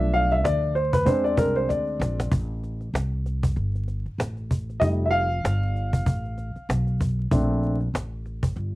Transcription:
Already playing: upright bass B1, upright piano F3 A3 D4 E5
0.13 upright piano F5, cajon slap
0.30 upright piano E5, cajon slap
0.44 upright bass D2, upright piano D5, cajon slap
0.62 cajon slap
0.75 upright piano C5, cajon slap
0.93 upright piano B4, cajon bass
1.05 upright bass E2, upright piano G#3 C4 D4 C5, cajon bass, cajon slap
1.24 upright piano D5, cajon slap
1.37 upright bass C2, upright piano A#4, cajon bass
1.56 upright piano C5, cajon slap
1.69 upright bass D2, upright piano D5, cajon slap
1.87 cajon slap
2.00 upright bass A#1, cajon slap
2.20 cajon slap
2.32 upright bass A1, cajon bass
2.64 cajon slap
2.81 cajon slap
2.94 upright bass C2, cajon slap
3.26 cajon slap
3.43 cajon bass
3.56 upright bass G1, cajon slap
3.75 cajon slap
3.88 cajon slap
4.06 muted upright bass stroke, cajon slap
4.18 upright bass A1, cajon slap
4.37 cajon slap
4.51 cajon bass
4.70 cajon slap
4.80 upright bass F1, upright piano G3 A3 D#4 D#5, cajon bass
5.06 upright piano E5
5.10 upright piano F5, cajon slap
5.31 cajon slap
5.44 upright bass G1, cajon slap
5.76 cajon slap
5.93 cajon bass
6.06 upright bass A1, cajon bass, cajon slap
6.25 cajon slap
6.38 cajon slap
6.56 muted upright bass stroke, cajon slap
6.69 upright bass B1, cajon slap
6.87 cajon slap
7.01 cajon bass
7.19 cajon slap
7.31 upright bass A#1, upright piano A3 C4 D4, cajon bass
7.63 cajon slap
7.81 cajon slap
7.94 upright bass A1, cajon slap
8.26 cajon slap
8.43 cajon bass
8.56 upright bass G1, cajon slap

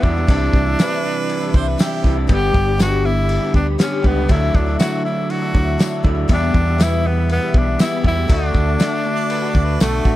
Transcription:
0.02 fingered electric bass E2, clean electric guitar E2 B2, steel-string acoustic guitar E3 G3 B3 E4, tenor saxophone D4, kick
0.15 steel-string acoustic guitar E3 G3 B3 E4
0.27 fingered electric bass C2, steel-string acoustic guitar C3 E3 G3 D4 E4, kick, crash
0.53 fingered electric bass C2, steel-string acoustic guitar E3 G3 D4 E4, kick
0.66 steel-string acoustic guitar G3 D4 E4
0.79 steel-string acoustic guitar C3 E3 G3 D4 E4, harmonica B4, snare, tambourine, crash
1.03 steel-string acoustic guitar E3 G3 D4 E4
1.29 crash
1.41 steel-string acoustic guitar G3 D4 E4
1.53 fingered electric bass C2, steel-string acoustic guitar E3 G3 D4 E4, harmonica C5, kick
1.68 harmonica B4
1.78 steel-string acoustic guitar C3 E3 G3 D4 E4, harmonica G4, snare, tambourine, crash
2.02 fingered electric bass C2, steel-string acoustic guitar E3 G3 D4 E4, kick
2.06 clean electric guitar C3 E3
2.15 steel-string acoustic guitar G3 D4 E4
2.27 fingered electric bass G1, steel-string acoustic guitar G2 D3 G3 B3 D4 G4, tonewheel organ G4 D5 B5, kick, crash
2.32 tenor saxophone G4
2.52 fingered electric bass G1, steel-string acoustic guitar G3 B3 D4 G4, kick
2.65 steel-string acoustic guitar G3 B3 D4 G4
2.77 steel-string acoustic guitar G2 D3 G3 B3 D4 G4, snare, tambourine, crash
2.82 tenor saxophone F#4
3.04 steel-string acoustic guitar G3 B3 D4 G4, tenor saxophone E4
3.29 crash
3.42 steel-string acoustic guitar G3 B3 D4 G4
3.54 fingered electric bass D2, steel-string acoustic guitar G3 B3 D4 G4, tenor saxophone D4, kick
3.78 steel-string acoustic guitar G2 D3 G3 B3 D4 G4, tenor saxophone C#4, snare, tambourine, crash
4.03 fingered electric bass C#2, clean electric guitar D3, steel-string acoustic guitar G3 B3 D4 G4, kick
4.07 clean electric guitar G2, tenor saxophone B3
4.15 steel-string acoustic guitar G3 B3 D4 G4
4.28 fingered electric bass D2, steel-string acoustic guitar D3 F#3 A3 D4 E4, tenor saxophone E4, tonewheel organ F#4 D5 E5, kick, crash
4.54 fingered electric bass D2, steel-string acoustic guitar F#3 A3 D4 E4, tenor saxophone D4, kick
4.66 steel-string acoustic guitar D4 E4
4.70 steel-string acoustic guitar A3
4.79 steel-string acoustic guitar D3 F#3 A3 D4 E4, tenor saxophone F#4, snare, tambourine, crash
5.05 steel-string acoustic guitar F#3 A3 D4 E4, tenor saxophone E4
5.30 tenor saxophone F#4, crash
5.42 steel-string acoustic guitar A3 D4 E4
5.54 fingered electric bass D2, steel-string acoustic guitar F#3 A3 D4 E4, kick
5.78 steel-string acoustic guitar D3 F#3 A3 D4 E4, snare, tambourine, crash
6.03 fingered electric bass D2, steel-string acoustic guitar F#3 A3 D4 E4, kick
6.08 clean electric guitar D3
6.15 steel-string acoustic guitar A3 D4 E4
6.28 steel-string acoustic guitar E2 B2 E3 G3 B3 E4, fingered electric bass E2, tonewheel organ G4 B5, kick, crash
6.33 tenor saxophone D4, clean electric guitar G4
6.53 fingered electric bass E2, steel-string acoustic guitar E3 G3 B3 E4, kick
6.65 steel-string acoustic guitar E3 G3 B3 E4
6.78 steel-string acoustic guitar E2 B2 E3 G3 B3 E4, snare, tambourine, crash
6.83 tenor saxophone E4
7.03 steel-string acoustic guitar E3 G3 B3 E4, tenor saxophone B3
7.29 tenor saxophone B3, crash
7.40 steel-string acoustic guitar E3 G3 B3 E4
7.53 fingered electric bass B1, steel-string acoustic guitar E3 G3 B3 E4, kick
7.58 tenor saxophone D4
7.79 steel-string acoustic guitar E2 B2 E3 G3 B3 E4, tenor saxophone E4, snare, tambourine, crash
8.01 fingered electric bass E2, steel-string acoustic guitar E3 G3 B3 E4, clean electric guitar G4, kick
8.05 clean electric guitar E2 B2 E3, tenor saxophone E4
8.15 steel-string acoustic guitar E3 G3 B3 E4
8.28 fingered electric bass D2, steel-string acoustic guitar D3 A3 D4 F#4, tonewheel organ F#4 D5 A5, kick, crash
8.32 tenor saxophone D4
8.52 fingered electric bass D2, steel-string acoustic guitar D3 A3 D4 F#4, kick
8.65 steel-string acoustic guitar A3 D4 F#4
8.79 steel-string acoustic guitar D3 A3 D4 F#4, snare, tambourine, crash
9.03 steel-string acoustic guitar D3 A3 D4 F#4
9.16 harmonica D5
9.30 harmonica B4, crash
9.42 steel-string acoustic guitar A3 D4 F#4
9.50 steel-string acoustic guitar D3, harmonica D5
9.55 fingered electric bass D2, steel-string acoustic guitar A3 D4 F#4, kick
9.65 harmonica B4
9.80 fingered electric bass B1, steel-string acoustic guitar D3 A3 D4 F#4, tenor saxophone A3, harmonica A4, snare, tambourine, crash
10.05 fingered electric bass A1, steel-string acoustic guitar D3 A3 D4 F#4, kick

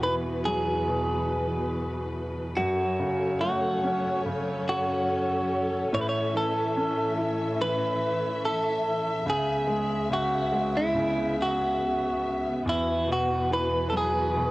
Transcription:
Already playing: grand piano E2 B2, string section E2 E3 B3 F#4 B4
0.03 grand piano E3, clean electric guitar B4
0.45 grand piano F#3, clean electric guitar G#4
0.88 grand piano B2
2.57 string section F#2 F#3 C#4 A4 C#5, grand piano F#2, clean electric guitar F#4
2.99 grand piano C#3
3.41 grand piano A3, clean electric guitar F#4
3.84 grand piano C#4
4.26 grand piano C#3
4.69 clean electric guitar F#4
5.93 grand piano A2, string section A2 E3 E5, clean electric guitar C#5
6.01 clean electric guitar B4
6.09 clean electric guitar C#5
6.34 grand piano E3, clean electric guitar A4
6.77 grand piano C#4
7.18 grand piano E4
7.61 grand piano E3, clean electric guitar B4
8.45 clean electric guitar A4
9.26 string section C#2 C#3 B3 G#4, grand piano C#3, clean electric guitar G#4
9.67 grand piano G#3
10.10 grand piano C#3, clean electric guitar F#4
10.52 grand piano G#3
10.77 clean electric guitar E4
10.95 grand piano C#3
11.42 clean electric guitar F#4
12.65 grand piano E2, string section E2 E3 F#4 B4, clean electric guitar E4
13.08 grand piano B2
13.12 clean electric guitar F#4
13.51 grand piano E3, clean electric guitar B4
13.90 grand piano F#3, clean electric guitar A4
13.97 clean electric guitar G#4
14.35 grand piano B2

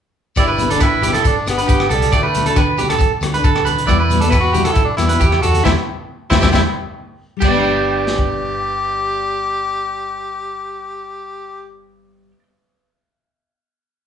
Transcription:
0.36 fingered electric bass G1, nylon-string guitar D4 G4, tenor saxophone E4, clean electric guitar D5, muted nylon-string guitar stroke, kick, cross-stick, closed hi-hat, low agogo, shekere
0.48 clean electric guitar B4
0.58 nylon-string guitar B3 D4 G4, closed hi-hat, low conga, shekere
0.70 tenor saxophone D4, nylon-string guitar D4 G4, clean electric guitar A4, closed hi-hat, high conga
0.80 tenor saxophone E4, clean electric guitar B4, kick, cross-stick, closed hi-hat, low agogo, shekere
1.02 nylon-string guitar B3 D4 G4, clean electric guitar G4, closed hi-hat, high conga, low conga, shekere
1.13 clean electric guitar A4, cross-stick, closed hi-hat, high conga, low agogo
1.24 tenor saxophone D4, kick, closed hi-hat, low conga, shekere
1.46 fingered electric bass G1, nylon-string guitar B3 D4 G4, tenor saxophone B3, cross-stick, closed hi-hat, low agogo, shekere
1.58 nylon-string guitar D4 G4, clean electric guitar B4, closed hi-hat
1.68 fingered electric bass G1, clean electric guitar G4, kick, closed hi-hat, shekere
1.80 cross-stick, high conga, low agogo
1.89 fingered electric bass C2, clean electric guitar A4, closed hi-hat, low conga, shekere
1.94 tenor saxophone G3
2.02 closed hi-hat, high conga
2.12 fingered electric bass D2, nylon-string guitar A3 D4 F#4, tenor saxophone A3, clean electric guitar D5, kick, cross-stick, closed hi-hat, low agogo, shekere
2.23 clean electric guitar B4
2.34 nylon-string guitar A3 D4, closed hi-hat, low conga, shekere
2.39 nylon-string guitar F#4
2.46 nylon-string guitar D4 F#4, clean electric guitar A4, closed hi-hat, high conga
2.56 clean electric guitar B4, kick, cross-stick, closed hi-hat, low agogo, shekere
2.77 nylon-string guitar A3 D4, clean electric guitar G4, closed hi-hat, high conga, low conga, shekere
2.82 nylon-string guitar F#4
2.89 clean electric guitar A4, cross-stick, closed hi-hat, high conga, low agogo
2.98 kick, closed hi-hat, low conga, shekere
3.21 fingered electric bass D2, nylon-string guitar A3 D4, cross-stick, closed hi-hat, low agogo, shekere
3.25 nylon-string guitar F#4
3.34 nylon-string guitar D4, clean electric guitar B4, muted nylon-string guitar stroke, closed hi-hat
3.44 fingered electric bass D2, clean electric guitar A4, kick, closed hi-hat, shekere
3.55 cross-stick, high conga, low agogo
3.65 fingered electric bass D2, clean electric guitar B4, closed hi-hat, low conga, shekere
3.78 closed hi-hat, high conga
3.87 fingered electric bass E2, nylon-string guitar G3 B3 E4 F#4, tenor saxophone E4, clean electric guitar D5, kick, cross-stick, closed hi-hat, low agogo, shekere
4.00 clean electric guitar B4
4.09 nylon-string guitar G3 B3 F#4, closed hi-hat, low conga, shekere
4.20 tenor saxophone D4, nylon-string guitar E4 F#4, clean electric guitar A4, closed hi-hat, high conga
4.25 nylon-string guitar B3
4.30 tenor saxophone E4, clean electric guitar B4, kick, cross-stick, closed hi-hat, low agogo, shekere
4.40 tenor saxophone F#4
4.53 nylon-string guitar G3 E4 F#4, clean electric guitar G4, closed hi-hat, high conga, low conga, shekere
4.64 clean electric guitar A4, cross-stick, closed hi-hat, high conga, low agogo
4.72 tenor saxophone E4, kick, closed hi-hat
4.76 low conga, shekere
4.85 tenor saxophone D4
4.97 fingered electric bass E2, nylon-string guitar G3 B3 E4 F#4, tenor saxophone E4, cross-stick, closed hi-hat, low agogo, shekere
5.09 nylon-string guitar B3 E4 F#4, clean electric guitar B4, closed hi-hat
5.20 fingered electric bass E2, clean electric guitar G4, kick, closed hi-hat, shekere
5.31 tenor saxophone E4, cross-stick, high conga, low agogo
5.41 fingered electric bass E2, tenor saxophone F#4, clean electric guitar A4, closed hi-hat, low conga, shekere
5.54 closed hi-hat, high conga
5.64 nylon-string guitar G3 C4 E4, clean electric guitar E4 G4 C5, tenor saxophone E4, kick, snare, high conga, low agogo, shekere
6.30 fingered electric bass E2, nylon-string guitar G3 C4 E4, tenor saxophone E4, clean electric guitar E4 G4 C5, kick, snare, high conga, low agogo, shekere
6.41 fingered electric bass E2, nylon-string guitar G3 C4 E4, clean electric guitar E4 G4 C5, tenor saxophone E4, kick, snare, high conga, low agogo, shekere
6.52 fingered electric bass E2, nylon-string guitar G3 C4 E4, clean electric guitar E4 G4 C5, tenor saxophone E4, kick, snare, high conga, low agogo, shekere
7.37 nylon-string guitar G3, clean electric guitar G4
7.41 fingered electric bass G1, tenor saxophone G4, clean electric guitar D5, kick, crash, high conga, low agogo, shekere
7.47 nylon-string guitar B3, clean electric guitar D5
7.52 nylon-string guitar D4, clean electric guitar G5
8.07 snare
8.19 kick

